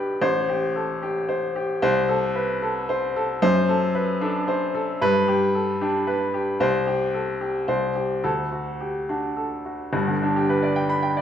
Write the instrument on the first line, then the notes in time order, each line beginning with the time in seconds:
grand piano
Already playing: B1 D4 G4 A4 B4
0.22 A1 C5
0.49 G4
0.76 A4
1.02 G4
1.29 C5
1.56 G4
1.82 C2 C5
2.09 A4
2.36 B4
2.62 A4
2.89 C5
3.16 A4
3.42 F#2 C5
3.69 A4
3.95 B4
4.21 D4 A4
4.48 C5
4.75 A4
5.02 G2 B4
5.28 G4
5.55 A4
5.81 D4 G4
6.07 B4
6.34 G4
6.60 C2 C5
6.87 G4
7.14 A4
7.41 G4
7.68 C2 C5
7.95 G4
8.24 D2 A4
8.52 F#4
8.80 G4
9.09 D4 F#4
9.37 A4
9.65 F#4
9.93 G1 G2
10.08 D3
10.22 D4
10.36 G4
10.49 B4
10.63 D5
10.76 G5
10.89 B5
11.02 G5
11.17 D5